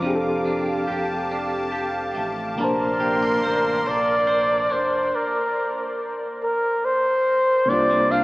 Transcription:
Already playing: A#3 D4 F4 A#4 F5 D6
0.00 F3 C4 G4 A5
0.04 F1 D4 G4
0.08 G#4
0.15 A4
0.45 D4
0.88 F1 G4
1.31 D4
1.72 G4
2.15 A1 A3
2.56 C3 A#3 D5 C6
2.60 A#1 D4 A#4 A5
2.64 C5
3.00 G4
3.22 A4
3.43 A1 C5
3.86 A#1 A4 D5
4.27 C5
4.70 F1 D4 C5
5.16 A#4
6.43 A#4
6.85 C5
7.66 C3 A#3 D5
7.70 C2 C3 D4 F4
7.74 C5
7.91 A#3
8.12 D4 F5

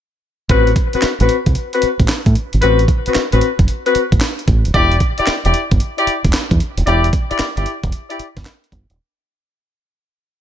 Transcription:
0.49 A1 C4 F#4 B4, kick, closed hi-hat
0.67 closed hi-hat
0.76 kick, closed hi-hat
0.93 C4 F#4 B4, muted fingered electric bass stroke, closed hi-hat
1.02 muted fingered electric bass stroke, snare, clap, closed hi-hat
1.20 A1 C4 F#4 B4, closed hi-hat
1.29 closed hi-hat
1.46 C2, kick, closed hi-hat
1.55 closed hi-hat
1.73 C4 F#4 B4, closed hi-hat
1.82 muted fingered electric bass stroke, closed hi-hat
2.00 A1, kick, closed hi-hat
2.08 snare, clap, closed hi-hat
2.26 A2, kick, closed hi-hat
2.35 closed hi-hat
2.53 G#1, closed hi-hat
2.61 A1 C4 F#4 B4, closed hi-hat
2.79 closed hi-hat
2.88 kick, closed hi-hat
3.06 C4 F#4 B4, muted fingered electric bass stroke, closed hi-hat
3.14 muted fingered electric bass stroke, snare, clap, closed hi-hat
3.32 A1 C4 F#4 B4, closed hi-hat
3.41 closed hi-hat
3.59 F#1, kick, closed hi-hat
3.68 closed hi-hat
3.85 C4 F#4 B4, closed hi-hat
3.95 muted fingered electric bass stroke, closed hi-hat
4.12 A1, kick, closed hi-hat
4.21 snare, clap, closed hi-hat
4.39 closed hi-hat
4.48 A1, kick, closed hi-hat
4.65 D#1, closed hi-hat
4.74 E1 E4 G4 D5, kick, closed hi-hat
4.92 closed hi-hat
5.00 kick, closed hi-hat
5.18 E4 G4 D5, muted fingered electric bass stroke, closed hi-hat
5.27 muted fingered electric bass stroke, snare, clap, closed hi-hat
5.44 E1 E4 G4 D5, closed hi-hat
5.54 closed hi-hat
5.71 G1, kick, closed hi-hat
5.80 closed hi-hat
5.98 E4 G4 D5, closed hi-hat
6.07 muted fingered electric bass stroke, closed hi-hat
6.25 E1, kick, closed hi-hat
6.33 snare, clap, closed hi-hat
6.51 E2, kick, closed hi-hat
6.60 closed hi-hat
6.77 D#1, closed hi-hat
6.86 E1 E4 G4 D5, closed hi-hat
7.04 closed hi-hat
7.13 kick, closed hi-hat
7.30 E4 G4 D5, muted fingered electric bass stroke, closed hi-hat
7.39 muted fingered electric bass stroke, snare, clap, closed hi-hat
7.56 G1 E4 G4 D5, closed hi-hat
7.66 closed hi-hat
7.83 E1, kick, closed hi-hat
7.92 closed hi-hat
8.09 E4 G4 D5, closed hi-hat
8.20 muted fingered electric bass stroke, closed hi-hat
8.37 G1, kick, snare, closed hi-hat
8.45 snare, clap, closed hi-hat
8.64 closed hi-hat
8.72 G1, kick, closed hi-hat
8.90 D#1, closed hi-hat

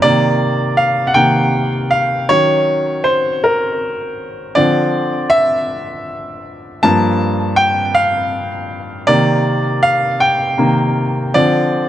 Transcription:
0.02 C3 D#3 A#3 D5
0.77 F5
1.07 F#5
1.14 C3 D#3 A#3 G5
1.91 F5
2.29 D#3 F#3 C#4 C#5
3.04 C5
3.44 A#4
4.55 D3 F3 C4 D5
5.30 E5
6.83 G2 F3 A#3 A5
7.56 G5
7.95 F5
9.07 C3 D#3 A#3 D5
9.83 F5
10.20 G5
10.58 C3 D#3 A#3
11.34 D3 F3 C4 D5

